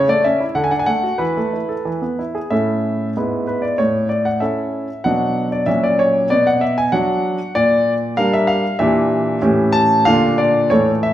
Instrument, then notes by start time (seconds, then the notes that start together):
grand piano
0.09 A3 D5
0.24 C#4 E5
0.40 E4
0.55 D3 F#5
0.64 G#5
0.71 D4 F#5
0.79 G#5
0.86 A3 F#5
1.03 F#4
1.18 E3 B4
1.37 A3
1.53 E4
1.69 A4
1.85 E3
2.02 B3
2.19 E4
2.35 G#4
2.50 A2 C#4 E4 A4 E5
3.17 G#2 B3 E4 B4
3.47 B4
3.62 D5
3.78 A2 C#5
4.09 D5
4.25 F#5
4.40 C#4 E4 A4 E5
5.04 B2 F#3 D4 F#4 F#5
5.52 D5
5.66 A#2 F#3 C#4 F#4 E5
5.84 D5
5.99 C#5
6.30 B2 D5
6.47 F#5
6.61 E5
6.78 G#5
6.92 F#3 D4 F#4 F#5
7.55 A#2 D5
8.17 G3 D4 A#4 F5
8.33 E5
8.47 F5
8.79 A#2 E3 D4 G4 E5
9.42 A2 E3 C#4 G4
9.72 A5
10.05 A#2 D3 D4 F4 F5
10.38 D5
10.70 A2 E3 A3 A4 C#5
11.03 E5